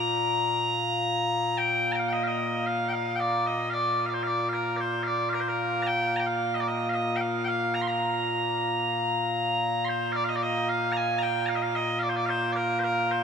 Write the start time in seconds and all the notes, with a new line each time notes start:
Already playing: A#2 A#3 A#5
1.58 G5
1.92 G5 A#5
1.99 F5
2.09 G5
2.13 D#5
2.23 D#5 F5
2.66 F5
2.89 G5
2.93 F5
3.16 G5
3.20 D5
3.47 D#5
3.70 D5 F5
4.06 D5 F5
4.14 C5
4.23 F5
4.27 D5
4.49 F5
4.53 A#4
4.76 C5 D5
5.03 D5 F5
5.29 F5
5.34 A#4
5.40 C5
5.48 A#4
5.83 A#5
5.87 G5
6.16 G5 A#5
6.26 F5
6.54 D#5
6.61 D5
6.68 D#5
6.89 F5
6.94 D#5
7.16 G5
7.21 F5
7.45 F5 G5
7.74 A#5
7.82 C6
7.88 A#5
9.85 C5 C6
10.12 D5 F5
10.24 F5
10.29 D#5
10.36 D5
10.42 D#5
10.69 F5
10.92 A#5
10.97 G#5
11.18 G5 A#5
11.46 F5 A#5
11.55 D#5
11.62 F5
11.75 D#5
11.99 D5 F5
12.09 C5
12.16 D5
12.26 C5 F5
12.52 A#4 D5
12.79 C5
12.84 A#4
13.11 C5